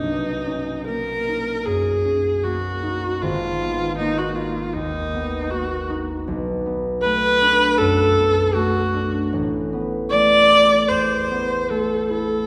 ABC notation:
X:1
M:4/4
L:1/16
Q:1/4=78
K:Ablyd
V:1 name="Viola"
E4 ^A4 _A4 ^F4 | F4 E _G F2 E4 G2 z2 | [K:Ador] z4 B4 A4 F4 | z4 d4 c4 A2 A2 |]
V:2 name="Harp"
[=B,,,_B,]2 ^C2 ^A,2 ^D2 ^F,,2 C2 A,2 D2 | A,,,2 _C2 B,2 E2 E,,2 C2 B,2 E2 | [K:Ador] B,,,2 B,2 A,2 D2 F,,2 B,2 A,2 D2 | A,,,2 B,2 A,2 E2 E,,2 B,2 A,2 E2 |]